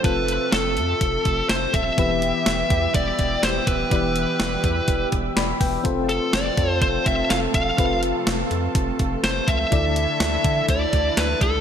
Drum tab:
HH |xxxxxxxx|xxxxxxxx|xxxxxxxo|xxxxxxxx|
SD |--o---o-|--o---o-|--o---o-|--o---o-|
BD |o---oo-o|o--ooo-o|o--ooo-o|o--ooo-o|

HH |xxxxxxxx|xxxxxxxx|
SD |--o---o-|--o---o-|
BD |o---oo-o|o--ooo-o|